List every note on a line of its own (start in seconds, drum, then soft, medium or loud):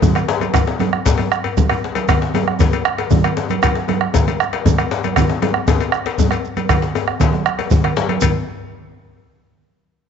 0.02 bombo low medium
0.02 high conga medium
0.02 djembe tone medium
0.02 low conga medium
0.02 djembe bass medium
0.02 shekere medium
0.15 bombo rim medium
0.15 cowbell soft
0.15 high conga soft
0.15 shekere soft
0.28 djembe slap medium
0.28 shekere soft
0.41 cowbell soft
0.41 djembe slap soft
0.41 high conga medium
0.41 djembe tone medium
0.41 shekere soft
0.54 bombo rim medium
0.54 bombo low loud
0.54 cowbell medium
0.54 low conga medium
0.54 djembe bass medium
0.54 shekere medium
0.67 djembe slap medium
0.80 bombo rim soft
0.80 cowbell soft
0.80 high conga medium
0.80 djembe tone medium
0.93 bombo rim medium
0.93 djembe slap soft
0.93 high conga soft
1.06 bombo rim soft
1.06 bombo low loud
1.06 cowbell soft
1.06 djembe slap medium
1.06 djembe bass medium
1.06 shekere medium
1.18 bombo rim soft
1.18 cowbell soft
1.18 high conga medium
1.18 djembe tone medium
1.32 bombo rim loud
1.32 djembe slap soft
1.32 high conga soft
1.32 shekere soft
1.44 cowbell medium
1.44 djembe bass soft
1.57 bombo rim soft
1.57 bombo low loud
1.57 high conga medium
1.57 low conga medium
1.57 djembe bass medium
1.57 shekere medium
1.69 bombo rim medium
1.69 cowbell medium
1.69 high conga soft
1.69 djembe bass medium
1.83 djembe slap medium
1.83 high conga soft
1.95 cowbell medium
1.95 djembe slap medium
1.95 high conga medium
1.95 shekere soft
2.08 bombo rim loud
2.08 bombo low medium
2.08 cowbell medium
2.08 low conga medium
2.08 djembe bass medium
2.08 shekere medium
2.22 djembe slap medium
2.34 cowbell medium
2.34 high conga medium
2.34 djembe tone medium
2.48 bombo rim medium
2.59 bombo low loud
2.59 cowbell medium
2.59 djembe slap medium
2.59 low conga medium
2.59 djembe bass medium
2.59 shekere medium
2.72 cowbell medium
2.72 djembe tone medium
2.72 high conga medium
2.72 shekere soft
2.85 bombo rim loud
2.85 shekere soft
2.98 bombo rim soft
2.98 cowbell medium
2.98 djembe slap medium
2.98 high conga soft
3.10 bombo low loud
3.10 djembe tone medium
3.10 high conga medium
3.10 djembe bass medium
3.10 low conga medium
3.10 shekere medium
3.24 bombo rim medium
3.24 cowbell medium
3.24 high conga soft
3.24 shekere soft
3.37 djembe slap medium
3.37 shekere soft
3.49 cowbell medium
3.49 djembe slap soft
3.49 djembe tone medium
3.49 high conga medium
3.49 shekere soft
3.62 bombo rim loud
3.62 bombo low medium
3.62 cowbell medium
3.62 djembe bass medium
3.62 low conga medium
3.62 shekere medium
3.75 djembe slap medium
3.88 cowbell medium
3.88 djembe tone medium
3.88 high conga medium
4.01 bombo rim medium
4.14 bombo low loud
4.14 cowbell soft
4.14 djembe slap medium
4.14 djembe bass medium
4.14 low conga medium
4.14 shekere medium
4.27 cowbell medium
4.27 djembe tone medium
4.27 high conga medium
4.27 shekere soft
4.40 bombo rim medium
4.40 shekere soft
4.53 bombo rim soft
4.53 cowbell medium
4.53 djembe slap medium
4.53 high conga soft
4.65 bombo low medium
4.65 djembe tone medium
4.65 high conga medium
4.65 djembe bass medium
4.65 low conga medium
4.65 shekere medium
4.78 bombo rim medium
4.78 cowbell medium
4.78 high conga soft
4.78 shekere soft
4.91 djembe slap medium
4.91 shekere soft
5.04 cowbell soft
5.04 djembe slap soft
5.04 djembe tone medium
5.04 high conga medium
5.04 shekere soft
5.16 bombo rim medium
5.16 bombo low medium
5.16 cowbell medium
5.16 djembe bass medium
5.16 low conga medium
5.16 shekere medium
5.29 djembe slap medium
5.42 cowbell soft
5.42 djembe tone medium
5.42 high conga medium
5.54 bombo rim medium
5.67 bombo low medium
5.67 cowbell soft
5.67 djembe slap medium
5.67 low conga medium
5.67 djembe bass medium
5.67 shekere medium
5.80 cowbell medium
5.80 djembe tone medium
5.80 shekere soft
5.92 bombo rim medium
5.92 shekere soft
6.05 bombo rim soft
6.05 cowbell medium
6.05 djembe slap medium
6.18 bombo low medium
6.18 djembe tone medium
6.18 high conga medium
6.18 djembe bass medium
6.18 shekere medium
6.31 bombo rim medium
6.31 cowbell medium
6.31 shekere soft
6.44 shekere soft
6.57 cowbell soft
6.57 djembe slap soft
6.57 high conga medium
6.57 djembe tone medium
6.57 shekere soft
6.69 bombo rim medium
6.69 bombo low medium
6.69 cowbell medium
6.69 djembe slap soft
6.69 low conga medium
6.69 djembe bass medium
6.69 shekere medium
6.82 bombo rim soft
6.82 djembe slap medium
6.82 high conga soft
6.82 shekere soft
6.95 cowbell soft
6.95 djembe tone medium
6.95 shekere soft
7.08 bombo rim medium
7.20 bombo low loud
7.20 cowbell soft
7.20 djembe slap medium
7.20 low conga medium
7.20 shekere medium
7.33 bombo rim soft
7.33 djembe slap soft
7.33 high conga medium
7.33 djembe tone medium
7.46 bombo rim medium
7.46 djembe slap soft
7.46 shekere soft
7.59 bombo rim soft
7.59 cowbell medium
7.59 djembe slap medium
7.59 high conga soft
7.70 bombo rim soft
7.70 bombo low loud
7.70 djembe slap soft
7.70 high conga medium
7.70 djembe tone medium
7.70 low conga medium
7.70 djembe bass medium
7.70 shekere medium
7.84 bombo rim medium
7.84 cowbell medium
7.84 low conga soft
7.96 djembe slap medium
7.96 high conga medium
7.96 shekere soft
8.09 cowbell medium
8.09 high conga medium
8.09 djembe tone medium
8.21 bombo low medium
8.21 cowbell medium
8.21 djembe bass medium
8.21 low conga medium
8.21 shekere medium